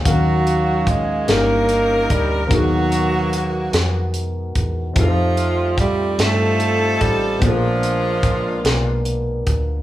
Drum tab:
HH |xxxxxx|xxxxxx|xxxxxx|xxxxxx|
SD |---o--|---o--|---o--|---o--|
BD |o-o--o|o----o|o-o--o|o-o--o|